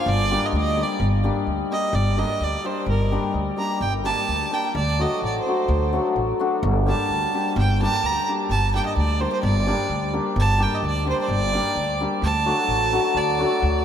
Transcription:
0.00 0.12 F3 medium
0.06 0.35 G1 loud
0.06 0.47 D5 loud
0.30 0.75 G3 medium
0.30 0.47 A#3 medium
0.30 0.48 D4 medium
0.30 0.48 G4 medium
0.46 0.55 D#5 medium
0.52 0.81 D2 loud
0.57 0.84 D#5 loud
0.76 1.06 G3 medium
0.76 0.94 A#3 medium
0.76 0.94 D4 soft
0.76 0.95 G4 medium
0.83 1.03 D5 medium
1.00 1.28 G1 loud
1.24 1.70 G3 medium
1.24 1.41 A#3 medium
1.24 1.41 D4 medium
1.24 1.41 G4 medium
1.47 1.61 D2 medium
1.71 2.15 G3 medium
1.71 1.88 A#3 soft
1.71 1.88 D4 soft
1.71 1.89 G4 soft
1.71 1.97 D#5 loud
1.93 2.22 G1 loud
1.93 2.20 D5 medium
2.16 2.63 G3 medium
2.16 2.35 A#3 medium
2.16 2.35 D4 medium
2.16 2.35 G4 medium
2.16 2.45 D#5 loud
2.40 2.55 D2 medium
2.40 2.67 D5 medium
2.64 3.10 G3 medium
2.64 2.82 A#3 soft
2.64 2.82 D4 medium
2.64 2.82 G4 medium
2.64 2.88 C5 medium
2.86 3.15 G1 loud
2.86 3.33 A#4 medium
3.11 3.55 G3 medium
3.11 3.29 A#3 medium
3.11 3.29 D4 medium
3.11 3.29 G4 medium
3.34 3.49 D2 medium
3.56 4.03 G3 medium
3.56 3.75 A#3 medium
3.56 3.76 D4 medium
3.56 3.76 G4 medium
3.56 3.81 A#5 medium
3.81 4.09 G1 loud
3.81 3.93 G5 loud
4.04 4.50 G3 medium
4.04 4.22 A#3 medium
4.04 4.22 D4 medium
4.04 4.23 G4 medium
4.04 4.55 A5 loud
4.28 4.43 D2 medium
4.51 4.82 G3 medium
4.51 4.69 A#3 medium
4.51 4.69 D4 soft
4.51 4.70 G4 soft
4.51 4.75 G5 loud
4.75 5.04 D2 loud
4.75 5.03 D5 loud
4.99 5.45 F#3 medium
4.99 5.17 A3 medium
4.99 5.17 D4 medium
4.99 5.17 F#4 medium
4.99 5.24 D#5 medium
5.22 5.37 A1 medium
5.22 5.39 D5 medium
5.41 6.06 C5 medium
5.46 5.91 F#3 medium
5.46 5.64 A3 medium
5.46 5.64 D4 soft
5.46 5.64 F#4 medium
5.68 5.97 D2 loud
5.93 6.38 F#3 medium
5.93 6.10 A3 medium
5.93 6.10 D4 medium
5.93 6.11 F#4 medium
6.16 6.30 A1 medium
6.39 6.69 F#3 medium
6.39 6.57 A3 medium
6.39 6.57 D4 medium
6.39 6.57 F#4 medium
6.63 6.91 G1 loud
6.86 7.32 G3 medium
6.86 7.04 A#3 medium
6.86 7.04 D4 medium
6.86 7.05 G4 medium
6.86 7.54 A5 loud
7.09 7.24 D2 medium
7.33 7.80 G3 medium
7.33 7.50 A#3 medium
7.33 7.51 D4 medium
7.33 7.51 G4 medium
7.56 7.85 G1 loud
7.56 7.80 G5 loud
7.81 8.26 G3 medium
7.81 7.98 A#3 medium
7.81 7.98 D4 medium
7.81 7.98 G4 medium
7.81 8.08 A5 loud
8.03 8.17 D2 medium
8.03 8.28 A#5 loud
8.28 8.56 G3 medium
8.28 8.44 A#3 medium
8.28 8.45 D4 medium
8.28 8.45 G4 medium
8.49 8.78 G1 loud
8.49 8.73 A5 loud
8.74 9.19 G3 medium
8.74 8.91 A#3 medium
8.74 8.91 D4 medium
8.74 8.91 G4 medium
8.74 8.85 G5 loud
8.86 8.96 D#5 medium
8.96 9.25 D2 medium
8.96 9.22 D5 medium
9.20 9.65 G3 medium
9.20 9.37 A#3 medium
9.20 9.37 D4 soft
9.20 9.38 G4 medium
9.20 9.32 C5 loud
9.33 9.43 C5 medium
9.43 9.71 G1 loud
9.43 10.09 D5 loud
9.67 10.12 G3 medium
9.67 9.84 A#3 medium
9.67 9.84 D4 medium
9.67 9.84 G4 medium
9.89 10.17 D2 medium
10.13 10.57 G3 medium
10.13 10.30 A#3 medium
10.13 10.30 D4 medium
10.13 10.31 G4 medium
10.36 10.64 G1 loud
10.36 10.64 A5 loud
10.58 11.04 G3 medium
10.58 10.76 A#3 medium
10.58 10.76 D4 medium
10.58 10.77 G4 medium
10.63 10.76 G5 loud
10.75 10.85 D#5 medium
10.83 11.11 D2 loud
10.83 11.07 D5 loud
11.05 11.52 G3 medium
11.05 11.23 A#3 medium
11.05 11.23 D4 medium
11.05 11.23 G4 medium
11.09 11.19 C5 medium
11.21 11.23 C5 medium
11.21 11.27 D5 medium
11.26 11.57 G1 loud
11.26 11.31 C5 medium
11.30 12.00 D5 loud
11.53 11.99 G3 medium
11.53 11.70 A#3 medium
11.53 11.70 D4 medium
11.53 11.70 G4 medium
11.75 12.04 D2 medium
12.01 12.28 G3 medium
12.01 12.17 A#3 medium
12.01 12.17 D4 medium
12.01 12.17 G4 medium
12.22 12.50 D2 loud
12.22 13.19 A5 loud
12.46 12.91 F#3 medium
12.46 12.63 A3 medium
12.46 12.63 D4 medium
12.46 12.63 F#4 medium
12.68 12.96 A1 medium
12.92 13.37 F#3 medium
12.92 13.09 A3 medium
12.92 13.09 D4 medium
12.92 13.10 F#4 medium
13.15 13.43 D2 loud
13.15 13.85 D5 loud
13.39 13.85 F#3 medium
13.39 13.55 A3 medium
13.39 13.56 D4 medium
13.39 13.56 F#4 medium
13.62 13.85 D2 loud

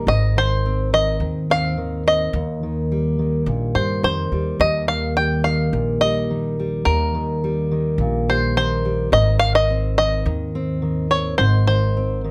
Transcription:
0.00 0.35 D#3 medium
0.07 1.16 G#1 medium
0.07 2.30 G#2 medium
0.07 0.37 D#5 medium
0.36 0.92 D#3 medium
0.36 0.89 C5 medium
0.66 1.49 C4 medium
0.93 1.20 D#3 medium
0.93 1.51 D#5 medium
1.20 2.29 D#2 medium
1.20 1.76 D#3 medium
1.50 2.06 C4 soft
1.50 2.03 F5 medium
1.77 2.62 D#3 medium
2.07 2.31 C4 medium
2.07 4.29 D#5 medium
2.33 3.42 D#2 medium
2.33 4.59 D#2 medium
2.63 3.18 D#3 medium
2.92 3.75 G3 medium
3.19 4.03 D#3 medium
3.46 3.73 A#1 medium
3.46 4.03 A#2 medium
3.75 4.00 G2 medium
3.75 4.31 G3 soft
3.75 4.03 C5 medium
4.03 4.29 F2 medium
4.03 4.87 D#3 medium
4.03 4.62 C5 medium
4.32 4.57 D#2 medium
4.32 5.17 G3 medium
4.60 5.69 D#2 medium
4.60 6.85 D#2 medium
4.60 4.88 D#5 medium
4.88 5.45 D#3 medium
4.88 5.16 F5 medium
5.17 6.01 G3 medium
5.17 5.44 G5 medium
5.44 6.29 D#3 medium
5.44 6.01 F5 medium
5.73 6.82 A#1 medium
5.73 6.30 A#2 medium
6.01 6.58 G3 medium
6.01 6.89 D#5 medium
6.30 7.13 D#3 medium
6.59 7.43 G3 medium
6.85 7.95 D#2 medium
6.85 9.12 D#2 medium
6.85 7.95 A#4 medium
7.15 7.70 D#3 soft
7.44 8.28 G3 medium
7.71 8.55 D#3 medium
7.98 9.08 A#1 medium
7.98 8.57 A#2 medium
8.29 8.84 G3 medium
8.29 8.55 C5 medium
8.56 9.40 D#3 medium
8.56 9.09 C5 medium
8.85 9.13 G3 medium
9.12 10.22 G#1 medium
9.12 11.36 G#2 medium
9.12 9.39 D#5 medium
9.39 9.96 D#3 medium
9.39 9.53 F5 loud
9.55 9.97 D#5 medium
9.70 10.54 C4 medium
9.98 10.25 D#3 medium
9.98 11.07 D#5 medium
10.26 11.35 D#2 medium
10.26 10.81 D#3 medium
10.55 11.10 C4 medium
10.82 11.66 D#3 medium
11.11 11.36 C4 medium
11.11 11.37 C#5 medium
11.38 12.31 G#1 medium
11.38 12.31 G#2 medium
11.38 11.66 C5 medium
11.67 12.23 D#3 soft
11.67 12.20 C5 medium
11.97 12.31 C4 medium
12.24 12.31 D#3 medium

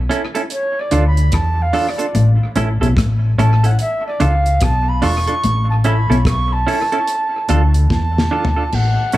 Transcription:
0.09 0.21 C#4 loud
0.09 0.22 E4 loud
0.09 0.22 A4 loud
0.09 closed hi-hat medium
0.35 0.41 C#4 soft
0.35 0.41 E4 medium
0.35 0.41 A4 medium
0.35 closed hi-hat medium
0.50 0.81 C#5 medium
0.50 closed hi-hat medium
0.80 1.07 D5 medium
0.91 1.30 D2 medium
0.91 1.17 D3 medium
0.91 1.03 D4 medium
0.91 1.04 F4 medium
0.91 1.04 A4 loud
0.91 closed hi-hat medium
1.07 1.36 B5 loud
1.17 closed hi-hat medium
1.32 1.71 E2 loud
1.32 1.58 E3 medium
1.32 1.64 A5 loud
1.32 kick loud
1.32 cross-stick loud
1.32 closed hi-hat loud
1.62 1.91 F5 medium
1.73 1.85 D4 medium
1.73 1.86 F4 medium
1.73 1.86 A4 loud
1.73 open hi-hat medium
1.90 2.30 D5 medium
1.98 2.05 D4 medium
1.98 2.05 F4 medium
1.98 2.05 A4 medium
1.98 closed hi-hat medium
2.15 2.38 A1 loud
2.15 2.30 A2 medium
2.15 closed hi-hat medium
2.56 2.79 A1 loud
2.56 2.72 A2 medium
2.56 2.68 C#4 medium
2.56 2.68 E4 medium
2.56 2.68 A4 medium
2.56 closed hi-hat medium
2.81 2.96 B1 loud
2.81 2.91 B2 medium
2.81 2.88 C#4 medium
2.81 2.87 E4 medium
2.81 2.87 A4 medium
2.81 closed hi-hat medium
2.97 3.35 A1 medium
2.97 3.22 A2 medium
2.97 kick loud
2.97 cross-stick loud
2.97 closed hi-hat medium
3.38 3.76 A1 medium
3.38 3.63 A2 medium
3.38 3.50 C#4 medium
3.38 3.50 E4 medium
3.38 3.51 A4 loud
3.38 3.67 A5 medium
3.38 closed hi-hat medium
3.64 3.70 C#4 medium
3.64 3.70 E4 medium
3.64 3.69 A4 medium
3.64 3.80 F#5 medium
3.64 closed hi-hat medium
3.79 4.04 E5 loud
3.79 closed hi-hat medium
4.07 4.23 D5 medium
4.20 4.58 C#2 medium
4.20 4.45 C#3 loud
4.20 4.32 D4 medium
4.20 4.32 F4 medium
4.20 4.33 A4 medium
4.20 4.65 F5 loud
4.20 closed hi-hat loud
4.46 closed hi-hat medium
4.61 5.00 B1 loud
4.61 4.86 B2 medium
4.61 4.90 A5 loud
4.61 kick loud
4.61 cross-stick loud
4.61 closed hi-hat loud
4.89 5.05 B5 loud
5.02 5.26 E1 medium
5.02 5.18 E2 medium
5.02 5.14 D4 medium
5.02 5.14 F4 medium
5.02 5.15 A4 medium
5.02 5.69 C#6 loud
5.02 open hi-hat medium
5.27 5.34 D4 medium
5.27 5.34 F4 medium
5.27 5.33 A4 medium
5.27 closed hi-hat medium
5.44 6.06 A1 loud
5.44 5.69 A2 medium
5.44 closed hi-hat medium
5.70 5.76 A5 medium
5.84 5.96 C#4 medium
5.84 5.97 E4 medium
5.84 5.97 A4 medium
5.84 6.24 B5 medium
5.84 closed hi-hat medium
6.10 6.63 B1 medium
6.10 6.35 B2 medium
6.10 6.16 C#4 medium
6.10 6.16 E4 medium
6.10 6.16 A4 medium
6.10 closed hi-hat medium
6.25 6.54 C#6 loud
6.25 kick loud
6.25 cross-stick loud
6.25 closed hi-hat medium
6.53 7.75 A5 loud
6.67 6.79 C#4 medium
6.67 6.79 E4 loud
6.67 6.79 A4 medium
6.67 open hi-hat medium
6.92 6.98 C#4 medium
6.92 6.98 E4 medium
6.92 6.98 A4 medium
6.92 closed hi-hat medium
7.08 closed hi-hat medium
7.49 7.87 D2 loud
7.49 7.74 D3 medium
7.49 7.61 D4 medium
7.49 7.61 F4 medium
7.49 7.61 A4 medium
7.49 closed hi-hat medium
7.74 closed hi-hat medium
7.90 8.28 E2 loud
7.90 8.15 E3 medium
7.90 8.76 A5 loud
7.90 kick loud
7.90 snare medium
8.18 snare medium
8.31 8.43 D4 medium
8.31 8.43 F4 medium
8.31 8.44 A4 loud
8.45 floor tom loud
8.56 8.63 D4 medium
8.56 8.63 F4 medium
8.56 8.62 A4 medium
8.72 8.96 A1 loud
8.72 9.17 F#5 loud
8.72 crash medium
9.12 9.17 A1 medium
9.12 9.17 C#4 medium
9.12 9.17 E4 medium
9.12 9.17 A4 medium
9.12 closed hi-hat medium

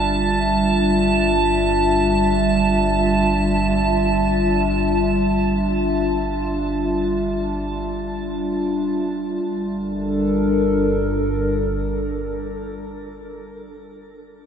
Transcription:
0.00 9.38 G1 medium
0.00 9.41 G3 medium
0.00 9.41 D4 medium
0.00 9.42 F4 medium
0.00 9.41 E5 medium
0.00 9.43 A5 medium
9.42 11.84 G1 medium
9.42 12.43 G3 medium
9.55 12.55 D4 medium
9.67 12.68 A4 medium
9.81 12.81 A#4 medium

